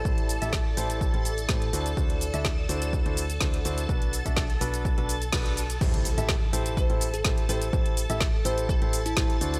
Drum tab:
CC |----------------|----------------|----------------|x---------------|
HH |-xox--ox-xox-xox|-xox--ox-xox-xox|-xox-xox-xox-xox|-xox--ox-xox-xox|
SH |x-xxx-xxx-xxx-xx|x-xxx-xxx-xxx-xx|x-xxx-xxx-xxx-xx|x-xxx-xxx-xxx-xx|
SD |----o-------o---|----o-------o---|----o-------o---|----o-------o---|
BD |o---o---o---o---|o---o---o---o---|o--oo---o---o---|o---o---o---o---|

CC |----------------|
HH |-xox--ox-xox-xox|
SH |x-xxx-xxx-xxx-xx|
SD |----o-------o---|
BD |o---o---o---o---|